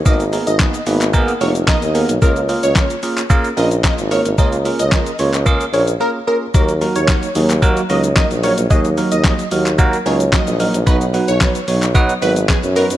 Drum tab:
HH |-xox-xox-xox-xox|-xox-xox-xox-xox|-xox-xox-xox----|-xox-xox-xox-xox|
SH |xxxxxxxxxxxxxxxx|xxxxxxxxxxxxxxxx|xxxxxxxxxxxx----|xxxxxxxxxxxxxxxx|
CP |----x--x----x---|----x--x----x---|----x--x--------|----x--x----x---|
SD |----o-------o---|----o-------o---|----o-----------|----o-------o---|
BD |o---o---o---o---|o---o---o---o---|o---o---o-------|o---o---o---o---|

HH |-xox-xox-xox-xox|-xox-xox-xox-xox|
SH |xxxxxxxxxxxxxxxx|xxxxxxxxxxxxxxxx|
CP |----x--x----x---|----x--x----x---|
SD |----o-------o---|----o-------o---|
BD |o---o---o---o---|o---o---o---o---|